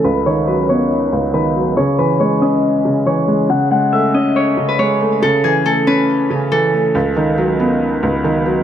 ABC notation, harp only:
X:1
M:4/4
L:1/16
Q:1/4=139
K:Alyd
V:1 name="Harp"
B2 c2 B2 c6 B4 | c2 B2 c2 d6 c4 | f2 f2 e2 d2 c3 B c2 z2 | A2 G2 A2 B6 A4 |
z16 |]